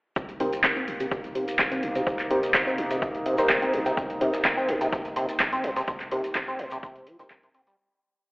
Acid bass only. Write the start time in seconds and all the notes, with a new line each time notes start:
0.16 C3
0.40 C3
0.64 C3
0.76 C4
0.88 A#2
1.00 C3
1.11 C3
1.35 C3
1.59 C3
1.72 C4
1.83 A#2
1.95 C3
2.07 C3
2.31 C3
2.54 C3
2.67 C4
2.78 A#2
2.91 C3
3.02 C3
3.26 C3
3.50 C3
3.62 C4
3.73 A#2
3.86 C3
3.97 C3
4.21 C3
4.45 C3
4.57 C4
4.69 A#2
4.81 C3
4.92 C3
5.16 C3
5.40 C3
5.53 C4
5.64 A#2
5.76 C3
5.88 C3
6.12 C3
6.35 C3
6.48 C4
6.59 A#2
6.72 C3
6.83 C3
7.07 F3
7.19 C3
7.31 C3
7.43 C3
7.55 C4
7.67 G3